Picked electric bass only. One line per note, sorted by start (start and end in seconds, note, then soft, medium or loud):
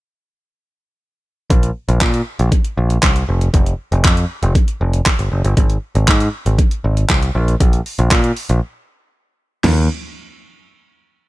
1.50 1.70 A#1 loud
1.89 1.98 A#1 medium
2.01 2.21 A#2 loud
2.40 2.49 A#1 medium
2.77 2.97 A#1 loud
3.03 3.22 C2 medium
3.28 3.48 F1 loud
3.54 3.73 F1 loud
3.92 4.02 F1 loud
4.05 4.24 F2 loud
4.43 4.52 F1 medium
4.81 5.00 F1 loud
5.19 5.29 G1 medium
5.32 5.41 F#1 medium
5.44 5.54 G1 medium
5.57 5.76 G#1 loud
5.95 6.05 G#1 loud
6.08 6.27 G#2 loud
6.46 6.56 G#1 medium
6.84 7.04 G#1 loud
7.10 7.29 C2 loud
7.35 7.54 A#1 loud
7.60 7.80 A#1 loud
7.99 8.08 A#1 loud
8.11 8.31 A#2 loud
8.50 8.59 A#1 medium
9.64 9.88 D#2 medium